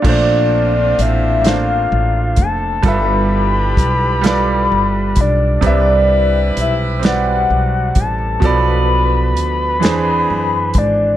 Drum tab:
CC |x-----|------|------|------|
HH |--xx-x|x-xx-x|x-xx-x|x-xx-x|
SD |---o--|---o--|---o--|---o--|
BD |o----o|o-o--o|o----o|o----o|